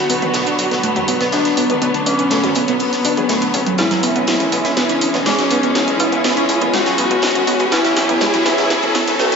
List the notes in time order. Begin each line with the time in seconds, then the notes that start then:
Already playing: D3 F#3 B3 F#4, riser
0.10 B1 B3, closed hi-hat, open hi-hat
0.22 B1 B4, closed hi-hat, mid tom
0.34 B1 B3, snare, closed hi-hat
0.46 D4, closed hi-hat
0.58 B1, closed hi-hat, open hi-hat
0.71 A1 B3, snare, closed hi-hat
0.83 B1 A3, closed hi-hat
0.96 F#3, closed hi-hat, mid tom
1.08 B1 B3, closed hi-hat, open hi-hat
1.21 B1 B3, snare, closed hi-hat
1.32 B1 D4, snare, closed hi-hat
1.45 snare, closed hi-hat
1.57 B1 B3, closed hi-hat, open hi-hat
1.70 B1 B4, closed hi-hat, mid tom
1.82 B1 B3, closed hi-hat
1.94 D4, closed hi-hat
2.06 B1 C#4, closed hi-hat, open hi-hat
2.19 B1 B3, closed hi-hat
2.31 B1 A3, snare, closed hi-hat
2.44 F#3, closed hi-hat, mid tom
2.55 B1 B3, closed hi-hat, open hi-hat
2.68 A1 B3, closed hi-hat
2.80 B1 B3, closed hi-hat, open hi-hat
2.93 snare, closed hi-hat
3.04 B1 D4, closed hi-hat, open hi-hat
3.17 B1 G#4, closed hi-hat, mid tom
3.29 F#1 A3, snare, closed hi-hat
3.42 B3, closed hi-hat
3.54 B1 C#4, closed hi-hat, open hi-hat
3.66 F#1 F#3, closed hi-hat
3.78 B1 E3 G#3 C#4 E4, snare, closed hi-hat
3.91 F#3, snare, closed hi-hat
4.03 B1 B3, closed hi-hat, open hi-hat
4.16 B1 B3, closed hi-hat
4.27 B1, snare, closed hi-hat
4.40 closed hi-hat, mid tom
4.52 B1 B3, closed hi-hat, open hi-hat
4.65 B1 B4, snare, closed hi-hat
4.77 B1 B3, snare, closed hi-hat
4.89 C#4, closed hi-hat
5.01 B1, closed hi-hat, open hi-hat
5.14 B1 B3, snare, closed hi-hat, mid tom
5.26 B1 G#3 C#4, snare, closed hi-hat
5.38 F#3, snare, closed hi-hat
5.51 B1 B3, closed hi-hat, open hi-hat
5.63 B1 B3, closed hi-hat
5.75 B1, snare, closed hi-hat
5.88 closed hi-hat, mid tom
6.00 B1 B3 E4, closed hi-hat, open hi-hat
6.12 B1 B4, closed hi-hat
6.24 B1 B3, snare, closed hi-hat
6.37 C#4, closed hi-hat
6.49 B1, closed hi-hat, open hi-hat
6.61 B1 B3, closed hi-hat, mid tom
6.73 B1 G#3 F#4, snare, closed hi-hat, open hi-hat
6.86 F#3, snare, closed hi-hat
6.98 B1 B3, closed hi-hat, open hi-hat
7.11 B1 B3, closed hi-hat
7.22 B1, snare, closed hi-hat
7.35 closed hi-hat, mid tom
7.47 B1 B3, closed hi-hat, open hi-hat
7.59 B1 B4, closed hi-hat
7.72 B1 F#3 B3 E4, snare, closed hi-hat
7.85 C#4, snare, closed hi-hat
7.96 B1, snare, closed hi-hat, open hi-hat
8.09 B1 B3, closed hi-hat, mid tom
8.21 B1 G#3, snare, closed hi-hat
8.34 F#3, closed hi-hat
8.46 B1 B3, snare, closed hi-hat, open hi-hat
8.58 B1 B3, snare, closed hi-hat
8.70 B1, snare, closed hi-hat
8.83 closed hi-hat, mid tom
8.95 B1 B3, snare, closed hi-hat, open hi-hat
9.07 B1 B4, snare, closed hi-hat
9.19 B1 B3 F#4, snare, closed hi-hat
9.32 C#4, snare, closed hi-hat